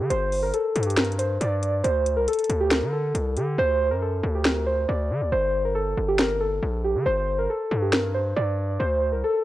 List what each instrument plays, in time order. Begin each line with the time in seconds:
0.10 808-style bass G1, synth keys C5, closed hi-hat
0.32 open hi-hat
0.43 synth keys A#4
0.54 synth keys A4, closed hi-hat
0.76 808-style bass G2, closed hi-hat
0.83 synth keys G4, closed hi-hat
0.90 closed hi-hat
0.97 synth keys A#4, snare, closed hi-hat
1.05 closed hi-hat
1.12 closed hi-hat
1.19 synth keys C5, closed hi-hat
1.41 808-style bass G2, synth keys D5, closed hi-hat
1.63 closed hi-hat
1.84 808-style bass D2, synth keys C5, closed hi-hat
2.06 closed hi-hat
2.16 808-style bass C2, synth keys A#4
2.28 synth keys A4, closed hi-hat
2.33 closed hi-hat
2.39 closed hi-hat
2.44 closed hi-hat
2.50 808-style bass D2, closed hi-hat
2.60 synth keys G4
2.71 synth keys A#4, snare, closed hi-hat
2.82 808-style bass D3
2.93 synth keys A4
3.15 808-style bass C2, closed hi-hat
3.36 808-style bass D3, synth keys G4, closed hi-hat
3.58 808-style bass D2, synth keys C5
3.91 808-style bass F#2, synth keys A#4
4.02 synth keys A4
4.23 808-style bass D2
4.35 synth keys G4
4.45 synth keys A#4, snare
4.67 synth keys C5
4.88 808-style bass D2, synth keys D5
5.10 808-style bass D3
5.21 808-style bass D2
5.32 808-style bass G1, synth keys C5
5.65 synth keys A#4
5.75 synth keys A4
5.97 808-style bass G1
6.08 synth keys G4
6.18 synth keys A#4, snare
6.40 synth keys A4
6.63 808-style bass A#1
6.84 synth keys G4
6.95 808-style bass D3
7.06 808-style bass G1, synth keys C5
7.38 synth keys A#4
7.50 synth keys A4
7.71 808-style bass G2
7.82 synth keys G4
7.93 synth keys A#4, snare
8.14 synth keys C5
8.36 808-style bass G2, synth keys D5
8.79 808-style bass D2, synth keys C5
9.12 808-style bass C2, synth keys A#4
9.24 synth keys A4